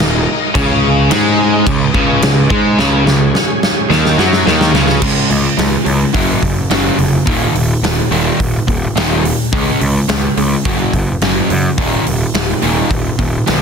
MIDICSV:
0, 0, Header, 1, 5, 480
1, 0, Start_track
1, 0, Tempo, 561798
1, 470, Time_signature, 4, 2, 24, 8
1, 11635, End_track
2, 0, Start_track
2, 0, Title_t, "Tonewheel organ"
2, 0, Program_c, 0, 16
2, 0, Note_on_c, 0, 63, 73
2, 0, Note_on_c, 0, 70, 63
2, 0, Note_on_c, 0, 75, 80
2, 432, Note_off_c, 0, 70, 0
2, 433, Note_off_c, 0, 63, 0
2, 471, Note_on_c, 0, 68, 62
2, 475, Note_on_c, 0, 61, 70
2, 2351, Note_off_c, 0, 75, 0
2, 2377, Note_on_c, 0, 73, 75
2, 4260, Note_off_c, 0, 68, 0
2, 4261, Note_off_c, 0, 61, 0
2, 4273, Note_off_c, 0, 73, 0
2, 11635, End_track
3, 0, Start_track
3, 0, Title_t, "Overdriven electric guitar"
3, 0, Program_c, 1, 29
3, 0, Note_on_c, 1, 39, 67
3, 188, Note_off_c, 1, 39, 0
3, 472, Note_on_c, 1, 49, 92
3, 941, Note_off_c, 1, 49, 0
3, 947, Note_on_c, 1, 56, 118
3, 1417, Note_off_c, 1, 56, 0
3, 1433, Note_on_c, 1, 49, 70
3, 1620, Note_off_c, 1, 49, 0
3, 1670, Note_on_c, 1, 49, 86
3, 1898, Note_off_c, 1, 49, 0
3, 1908, Note_on_c, 1, 49, 77
3, 2096, Note_off_c, 1, 49, 0
3, 2141, Note_on_c, 1, 56, 94
3, 2372, Note_off_c, 1, 56, 0
3, 2380, Note_on_c, 1, 49, 101
3, 2608, Note_off_c, 1, 49, 0
3, 2618, Note_on_c, 1, 49, 65
3, 2809, Note_off_c, 1, 49, 0
3, 3338, Note_on_c, 1, 51, 89
3, 3569, Note_off_c, 1, 51, 0
3, 3573, Note_on_c, 1, 54, 86
3, 3806, Note_off_c, 1, 54, 0
3, 3809, Note_on_c, 1, 51, 104
3, 4044, Note_off_c, 1, 51, 0
3, 4054, Note_on_c, 1, 49, 95
3, 4276, Note_off_c, 1, 49, 0
3, 4286, Note_on_c, 1, 49, 77
3, 4291, Note_on_c, 1, 56, 86
3, 4295, Note_on_c, 1, 61, 79
3, 4515, Note_off_c, 1, 49, 0
3, 4517, Note_off_c, 1, 56, 0
3, 4519, Note_off_c, 1, 61, 0
3, 4529, Note_on_c, 1, 49, 65
3, 4529, Note_on_c, 1, 56, 79
3, 4747, Note_off_c, 1, 49, 0
3, 4747, Note_off_c, 1, 56, 0
3, 4762, Note_on_c, 1, 56, 73
3, 4764, Note_on_c, 1, 49, 77
3, 4984, Note_off_c, 1, 49, 0
3, 4984, Note_off_c, 1, 56, 0
3, 4999, Note_on_c, 1, 49, 60
3, 5005, Note_on_c, 1, 56, 66
3, 5222, Note_off_c, 1, 49, 0
3, 5225, Note_off_c, 1, 56, 0
3, 5241, Note_on_c, 1, 42, 59
3, 5247, Note_on_c, 1, 49, 76
3, 5254, Note_on_c, 1, 54, 72
3, 5473, Note_off_c, 1, 42, 0
3, 5476, Note_off_c, 1, 49, 0
3, 5480, Note_off_c, 1, 54, 0
3, 5488, Note_on_c, 1, 42, 57
3, 5490, Note_on_c, 1, 49, 57
3, 5707, Note_off_c, 1, 42, 0
3, 5708, Note_off_c, 1, 49, 0
3, 5724, Note_on_c, 1, 42, 83
3, 5731, Note_on_c, 1, 49, 91
3, 5736, Note_on_c, 1, 54, 91
3, 5955, Note_off_c, 1, 42, 0
3, 5958, Note_off_c, 1, 49, 0
3, 5961, Note_off_c, 1, 54, 0
3, 5966, Note_on_c, 1, 42, 78
3, 5970, Note_on_c, 1, 49, 69
3, 6187, Note_off_c, 1, 42, 0
3, 6188, Note_off_c, 1, 49, 0
3, 6202, Note_on_c, 1, 39, 67
3, 6209, Note_on_c, 1, 46, 83
3, 6214, Note_on_c, 1, 51, 84
3, 6434, Note_off_c, 1, 39, 0
3, 6438, Note_off_c, 1, 46, 0
3, 6441, Note_off_c, 1, 51, 0
3, 6453, Note_on_c, 1, 39, 75
3, 6458, Note_on_c, 1, 46, 67
3, 6670, Note_off_c, 1, 39, 0
3, 6673, Note_off_c, 1, 46, 0
3, 6693, Note_on_c, 1, 39, 78
3, 6694, Note_on_c, 1, 46, 83
3, 6911, Note_off_c, 1, 39, 0
3, 6912, Note_off_c, 1, 46, 0
3, 6929, Note_on_c, 1, 39, 81
3, 6937, Note_on_c, 1, 46, 83
3, 6941, Note_on_c, 1, 51, 88
3, 7159, Note_off_c, 1, 39, 0
3, 7163, Note_off_c, 1, 46, 0
3, 7165, Note_off_c, 1, 51, 0
3, 7173, Note_on_c, 1, 39, 63
3, 7174, Note_on_c, 1, 46, 64
3, 7391, Note_off_c, 1, 39, 0
3, 7392, Note_off_c, 1, 46, 0
3, 7413, Note_on_c, 1, 39, 52
3, 7417, Note_on_c, 1, 46, 62
3, 7632, Note_off_c, 1, 39, 0
3, 7634, Note_off_c, 1, 46, 0
3, 7653, Note_on_c, 1, 39, 72
3, 7660, Note_on_c, 1, 46, 86
3, 7661, Note_on_c, 1, 51, 92
3, 7882, Note_off_c, 1, 39, 0
3, 7886, Note_off_c, 1, 46, 0
3, 7886, Note_off_c, 1, 51, 0
3, 7893, Note_on_c, 1, 39, 69
3, 7896, Note_on_c, 1, 46, 81
3, 8113, Note_off_c, 1, 39, 0
3, 8114, Note_off_c, 1, 46, 0
3, 8138, Note_on_c, 1, 49, 80
3, 8144, Note_on_c, 1, 56, 84
3, 8148, Note_on_c, 1, 61, 84
3, 8366, Note_off_c, 1, 49, 0
3, 8368, Note_off_c, 1, 56, 0
3, 8370, Note_off_c, 1, 61, 0
3, 8378, Note_on_c, 1, 49, 70
3, 8383, Note_on_c, 1, 56, 71
3, 8596, Note_off_c, 1, 49, 0
3, 8599, Note_off_c, 1, 56, 0
3, 8618, Note_on_c, 1, 49, 74
3, 8621, Note_on_c, 1, 56, 75
3, 8836, Note_off_c, 1, 49, 0
3, 8838, Note_off_c, 1, 56, 0
3, 8865, Note_on_c, 1, 49, 54
3, 8867, Note_on_c, 1, 56, 64
3, 9080, Note_off_c, 1, 49, 0
3, 9081, Note_off_c, 1, 56, 0
3, 9104, Note_on_c, 1, 42, 77
3, 9108, Note_on_c, 1, 49, 91
3, 9112, Note_on_c, 1, 54, 86
3, 9330, Note_off_c, 1, 42, 0
3, 9332, Note_off_c, 1, 49, 0
3, 9334, Note_off_c, 1, 54, 0
3, 9345, Note_on_c, 1, 42, 58
3, 9348, Note_on_c, 1, 49, 58
3, 9561, Note_off_c, 1, 42, 0
3, 9563, Note_off_c, 1, 49, 0
3, 9586, Note_on_c, 1, 42, 83
3, 9590, Note_on_c, 1, 49, 79
3, 9599, Note_on_c, 1, 54, 99
3, 9812, Note_off_c, 1, 42, 0
3, 9814, Note_off_c, 1, 49, 0
3, 9819, Note_off_c, 1, 54, 0
3, 9831, Note_on_c, 1, 42, 71
3, 9837, Note_on_c, 1, 49, 73
3, 10045, Note_off_c, 1, 42, 0
3, 10048, Note_off_c, 1, 49, 0
3, 10063, Note_on_c, 1, 39, 78
3, 10070, Note_on_c, 1, 46, 90
3, 10077, Note_on_c, 1, 51, 85
3, 10291, Note_off_c, 1, 39, 0
3, 10295, Note_off_c, 1, 46, 0
3, 10298, Note_off_c, 1, 51, 0
3, 10312, Note_on_c, 1, 39, 69
3, 10314, Note_on_c, 1, 46, 74
3, 10527, Note_off_c, 1, 39, 0
3, 10528, Note_off_c, 1, 46, 0
3, 10548, Note_on_c, 1, 39, 69
3, 10554, Note_on_c, 1, 46, 84
3, 10765, Note_off_c, 1, 39, 0
3, 10768, Note_off_c, 1, 46, 0
3, 10783, Note_on_c, 1, 39, 67
3, 10792, Note_on_c, 1, 46, 80
3, 10799, Note_on_c, 1, 51, 87
3, 11013, Note_off_c, 1, 39, 0
3, 11017, Note_off_c, 1, 46, 0
3, 11020, Note_off_c, 1, 51, 0
3, 11035, Note_on_c, 1, 39, 56
3, 11037, Note_on_c, 1, 46, 65
3, 11249, Note_off_c, 1, 39, 0
3, 11250, Note_off_c, 1, 46, 0
3, 11273, Note_on_c, 1, 39, 55
3, 11276, Note_on_c, 1, 46, 66
3, 11489, Note_off_c, 1, 39, 0
3, 11490, Note_off_c, 1, 46, 0
3, 11507, Note_on_c, 1, 39, 81
3, 11512, Note_on_c, 1, 46, 86
3, 11518, Note_on_c, 1, 51, 92
3, 11635, Note_off_c, 1, 39, 0
3, 11635, Note_off_c, 1, 46, 0
3, 11635, Note_off_c, 1, 51, 0
3, 11635, End_track
4, 0, Start_track
4, 0, Title_t, "Picked electric bass"
4, 0, Program_c, 2, 34
4, 0, Note_on_c, 2, 27, 73
4, 214, Note_off_c, 2, 27, 0
4, 471, Note_on_c, 2, 37, 101
4, 914, Note_off_c, 2, 37, 0
4, 949, Note_on_c, 2, 44, 93
4, 1392, Note_off_c, 2, 44, 0
4, 1423, Note_on_c, 2, 37, 77
4, 1646, Note_off_c, 2, 37, 0
4, 1661, Note_on_c, 2, 37, 102
4, 1884, Note_off_c, 2, 37, 0
4, 1902, Note_on_c, 2, 37, 68
4, 2124, Note_off_c, 2, 37, 0
4, 2139, Note_on_c, 2, 44, 97
4, 2362, Note_off_c, 2, 44, 0
4, 2377, Note_on_c, 2, 37, 89
4, 2600, Note_off_c, 2, 37, 0
4, 2615, Note_on_c, 2, 37, 81
4, 2839, Note_off_c, 2, 37, 0
4, 3333, Note_on_c, 2, 39, 78
4, 3556, Note_off_c, 2, 39, 0
4, 3572, Note_on_c, 2, 42, 100
4, 3796, Note_off_c, 2, 42, 0
4, 3812, Note_on_c, 2, 39, 90
4, 4036, Note_off_c, 2, 39, 0
4, 4048, Note_on_c, 2, 37, 94
4, 4273, Note_off_c, 2, 37, 0
4, 4287, Note_on_c, 2, 37, 81
4, 4437, Note_off_c, 2, 37, 0
4, 4530, Note_on_c, 2, 37, 78
4, 4679, Note_off_c, 2, 37, 0
4, 4769, Note_on_c, 2, 37, 82
4, 4918, Note_off_c, 2, 37, 0
4, 5007, Note_on_c, 2, 37, 75
4, 5157, Note_off_c, 2, 37, 0
4, 5253, Note_on_c, 2, 30, 86
4, 5401, Note_off_c, 2, 30, 0
4, 5490, Note_on_c, 2, 30, 82
4, 5639, Note_off_c, 2, 30, 0
4, 5729, Note_on_c, 2, 30, 78
4, 5879, Note_off_c, 2, 30, 0
4, 5965, Note_on_c, 2, 29, 73
4, 6117, Note_off_c, 2, 29, 0
4, 6214, Note_on_c, 2, 27, 89
4, 6363, Note_off_c, 2, 27, 0
4, 6445, Note_on_c, 2, 27, 73
4, 6597, Note_off_c, 2, 27, 0
4, 6686, Note_on_c, 2, 27, 73
4, 6838, Note_off_c, 2, 27, 0
4, 6930, Note_on_c, 2, 27, 87
4, 7080, Note_off_c, 2, 27, 0
4, 7176, Note_on_c, 2, 27, 83
4, 7325, Note_off_c, 2, 27, 0
4, 7419, Note_on_c, 2, 27, 84
4, 7567, Note_off_c, 2, 27, 0
4, 7653, Note_on_c, 2, 27, 87
4, 7952, Note_off_c, 2, 27, 0
4, 8141, Note_on_c, 2, 37, 86
4, 8290, Note_off_c, 2, 37, 0
4, 8382, Note_on_c, 2, 37, 83
4, 8530, Note_off_c, 2, 37, 0
4, 8622, Note_on_c, 2, 37, 85
4, 8771, Note_off_c, 2, 37, 0
4, 8862, Note_on_c, 2, 37, 78
4, 9011, Note_off_c, 2, 37, 0
4, 9102, Note_on_c, 2, 30, 75
4, 9251, Note_off_c, 2, 30, 0
4, 9343, Note_on_c, 2, 30, 89
4, 9492, Note_off_c, 2, 30, 0
4, 9582, Note_on_c, 2, 30, 76
4, 9732, Note_off_c, 2, 30, 0
4, 9830, Note_on_c, 2, 42, 79
4, 9978, Note_off_c, 2, 42, 0
4, 10065, Note_on_c, 2, 27, 81
4, 10214, Note_off_c, 2, 27, 0
4, 10312, Note_on_c, 2, 27, 72
4, 10459, Note_off_c, 2, 27, 0
4, 10548, Note_on_c, 2, 27, 74
4, 10697, Note_off_c, 2, 27, 0
4, 10793, Note_on_c, 2, 27, 79
4, 10941, Note_off_c, 2, 27, 0
4, 11025, Note_on_c, 2, 27, 80
4, 11175, Note_off_c, 2, 27, 0
4, 11269, Note_on_c, 2, 27, 75
4, 11419, Note_off_c, 2, 27, 0
4, 11519, Note_on_c, 2, 35, 73
4, 11635, Note_off_c, 2, 35, 0
4, 11635, End_track
5, 0, Start_track
5, 0, Title_t, "Drums"
5, 3, Note_on_c, 9, 38, 87
5, 88, Note_off_c, 9, 38, 0
5, 471, Note_on_c, 9, 36, 119
5, 473, Note_on_c, 9, 49, 63
5, 556, Note_off_c, 9, 36, 0
5, 559, Note_off_c, 9, 49, 0
5, 947, Note_on_c, 9, 49, 64
5, 955, Note_on_c, 9, 38, 118
5, 1033, Note_off_c, 9, 49, 0
5, 1040, Note_off_c, 9, 38, 0
5, 1424, Note_on_c, 9, 36, 94
5, 1426, Note_on_c, 9, 49, 57
5, 1509, Note_off_c, 9, 36, 0
5, 1511, Note_off_c, 9, 49, 0
5, 1661, Note_on_c, 9, 36, 93
5, 1747, Note_off_c, 9, 36, 0
5, 1900, Note_on_c, 9, 49, 56
5, 1908, Note_on_c, 9, 38, 95
5, 1986, Note_off_c, 9, 49, 0
5, 1993, Note_off_c, 9, 38, 0
5, 2139, Note_on_c, 9, 36, 101
5, 2224, Note_off_c, 9, 36, 0
5, 2382, Note_on_c, 9, 38, 64
5, 2468, Note_off_c, 9, 38, 0
5, 2625, Note_on_c, 9, 38, 75
5, 2710, Note_off_c, 9, 38, 0
5, 2863, Note_on_c, 9, 38, 75
5, 2948, Note_off_c, 9, 38, 0
5, 3103, Note_on_c, 9, 38, 86
5, 3189, Note_off_c, 9, 38, 0
5, 3344, Note_on_c, 9, 38, 76
5, 3430, Note_off_c, 9, 38, 0
5, 3464, Note_on_c, 9, 38, 70
5, 3550, Note_off_c, 9, 38, 0
5, 3581, Note_on_c, 9, 38, 93
5, 3666, Note_off_c, 9, 38, 0
5, 3699, Note_on_c, 9, 38, 75
5, 3785, Note_off_c, 9, 38, 0
5, 3820, Note_on_c, 9, 38, 88
5, 3906, Note_off_c, 9, 38, 0
5, 3938, Note_on_c, 9, 38, 90
5, 4024, Note_off_c, 9, 38, 0
5, 4058, Note_on_c, 9, 38, 108
5, 4143, Note_off_c, 9, 38, 0
5, 4177, Note_on_c, 9, 38, 78
5, 4262, Note_off_c, 9, 38, 0
5, 4287, Note_on_c, 9, 57, 114
5, 4289, Note_on_c, 9, 36, 111
5, 4372, Note_off_c, 9, 57, 0
5, 4375, Note_off_c, 9, 36, 0
5, 4529, Note_on_c, 9, 46, 58
5, 4615, Note_off_c, 9, 46, 0
5, 4772, Note_on_c, 9, 46, 65
5, 4779, Note_on_c, 9, 38, 107
5, 4857, Note_off_c, 9, 46, 0
5, 4865, Note_off_c, 9, 38, 0
5, 5007, Note_on_c, 9, 46, 50
5, 5093, Note_off_c, 9, 46, 0
5, 5248, Note_on_c, 9, 46, 69
5, 5250, Note_on_c, 9, 36, 86
5, 5334, Note_off_c, 9, 46, 0
5, 5335, Note_off_c, 9, 36, 0
5, 5488, Note_on_c, 9, 46, 52
5, 5490, Note_on_c, 9, 36, 71
5, 5574, Note_off_c, 9, 46, 0
5, 5576, Note_off_c, 9, 36, 0
5, 5728, Note_on_c, 9, 46, 64
5, 5736, Note_on_c, 9, 38, 95
5, 5814, Note_off_c, 9, 46, 0
5, 5822, Note_off_c, 9, 38, 0
5, 5969, Note_on_c, 9, 46, 50
5, 6054, Note_off_c, 9, 46, 0
5, 6211, Note_on_c, 9, 46, 71
5, 6213, Note_on_c, 9, 36, 107
5, 6296, Note_off_c, 9, 46, 0
5, 6298, Note_off_c, 9, 36, 0
5, 6454, Note_on_c, 9, 46, 53
5, 6539, Note_off_c, 9, 46, 0
5, 6697, Note_on_c, 9, 46, 73
5, 6705, Note_on_c, 9, 38, 104
5, 6783, Note_off_c, 9, 46, 0
5, 6790, Note_off_c, 9, 38, 0
5, 6936, Note_on_c, 9, 46, 49
5, 7021, Note_off_c, 9, 46, 0
5, 7177, Note_on_c, 9, 36, 86
5, 7177, Note_on_c, 9, 46, 66
5, 7262, Note_off_c, 9, 36, 0
5, 7262, Note_off_c, 9, 46, 0
5, 7418, Note_on_c, 9, 36, 82
5, 7420, Note_on_c, 9, 46, 47
5, 7504, Note_off_c, 9, 36, 0
5, 7505, Note_off_c, 9, 46, 0
5, 7663, Note_on_c, 9, 46, 59
5, 7670, Note_on_c, 9, 38, 83
5, 7748, Note_off_c, 9, 46, 0
5, 7756, Note_off_c, 9, 38, 0
5, 7904, Note_on_c, 9, 46, 57
5, 7990, Note_off_c, 9, 46, 0
5, 8139, Note_on_c, 9, 46, 77
5, 8140, Note_on_c, 9, 36, 116
5, 8224, Note_off_c, 9, 46, 0
5, 8226, Note_off_c, 9, 36, 0
5, 8383, Note_on_c, 9, 46, 60
5, 8468, Note_off_c, 9, 46, 0
5, 8619, Note_on_c, 9, 46, 69
5, 8627, Note_on_c, 9, 38, 104
5, 8705, Note_off_c, 9, 46, 0
5, 8712, Note_off_c, 9, 38, 0
5, 8862, Note_on_c, 9, 46, 54
5, 8948, Note_off_c, 9, 46, 0
5, 9100, Note_on_c, 9, 46, 68
5, 9102, Note_on_c, 9, 36, 95
5, 9185, Note_off_c, 9, 46, 0
5, 9188, Note_off_c, 9, 36, 0
5, 9341, Note_on_c, 9, 46, 52
5, 9342, Note_on_c, 9, 36, 71
5, 9427, Note_off_c, 9, 46, 0
5, 9428, Note_off_c, 9, 36, 0
5, 9581, Note_on_c, 9, 46, 62
5, 9589, Note_on_c, 9, 38, 88
5, 9667, Note_off_c, 9, 46, 0
5, 9675, Note_off_c, 9, 38, 0
5, 9825, Note_on_c, 9, 46, 50
5, 9910, Note_off_c, 9, 46, 0
5, 10063, Note_on_c, 9, 46, 79
5, 10065, Note_on_c, 9, 36, 113
5, 10148, Note_off_c, 9, 46, 0
5, 10151, Note_off_c, 9, 36, 0
5, 10308, Note_on_c, 9, 46, 55
5, 10394, Note_off_c, 9, 46, 0
5, 10546, Note_on_c, 9, 46, 60
5, 10553, Note_on_c, 9, 38, 110
5, 10631, Note_off_c, 9, 46, 0
5, 10639, Note_off_c, 9, 38, 0
5, 10783, Note_on_c, 9, 46, 48
5, 10869, Note_off_c, 9, 46, 0
5, 11027, Note_on_c, 9, 36, 99
5, 11028, Note_on_c, 9, 46, 57
5, 11113, Note_off_c, 9, 36, 0
5, 11113, Note_off_c, 9, 46, 0
5, 11266, Note_on_c, 9, 46, 50
5, 11268, Note_on_c, 9, 36, 70
5, 11351, Note_off_c, 9, 46, 0
5, 11354, Note_off_c, 9, 36, 0
5, 11511, Note_on_c, 9, 46, 67
5, 11519, Note_on_c, 9, 38, 94
5, 11596, Note_off_c, 9, 46, 0
5, 11604, Note_off_c, 9, 38, 0
5, 11635, End_track
0, 0, End_of_file